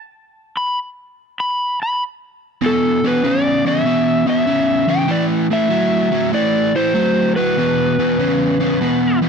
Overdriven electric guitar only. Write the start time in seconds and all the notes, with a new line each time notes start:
2.62 E2 B2
3.04 E2 B2
3.23 E2 C#3
3.65 E2 C#3
3.85 E2 B2
4.26 E2 B2
4.47 E2 C#3
4.88 E2 C#3
5.08 A2 E3
5.51 A2 E3
5.70 A2 F#3
6.12 A2 F#3
6.33 A2 E3
6.75 A2 E3
6.95 A2 F#3
7.37 A2 F#3
7.57 E2 B2
7.99 E2 B2
8.19 E2 C#3
8.60 E2 C#3
8.81 E2 B2
9.22 E2 B2